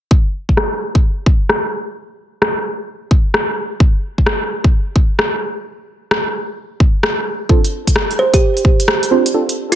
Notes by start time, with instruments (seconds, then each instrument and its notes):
0.11 kick
0.49 kick
0.57 cross-stick
0.95 kick
1.26 kick
1.49 cross-stick
2.42 cross-stick
3.11 kick
3.34 cross-stick
3.80 kick
4.18 kick
4.26 cross-stick
4.64 kick
4.96 kick
5.19 cross-stick
6.11 cross-stick
6.80 kick
7.03 cross-stick
7.49 synth stab C4 D4 F4 A4, kick
7.64 closed hi-hat
7.87 kick, closed hi-hat
7.96 cross-stick
8.11 closed hi-hat
8.19 kalimba C5
8.34 kalimba G4, kick, closed hi-hat
8.57 closed hi-hat
8.65 kick
8.80 closed hi-hat
8.88 cross-stick
9.03 closed hi-hat
9.11 synth stab C4 D4 F4 C5
9.26 closed hi-hat
9.34 synth stab C4 D4 F4 A4
9.49 closed hi-hat
9.72 kalimba F4, closed hi-hat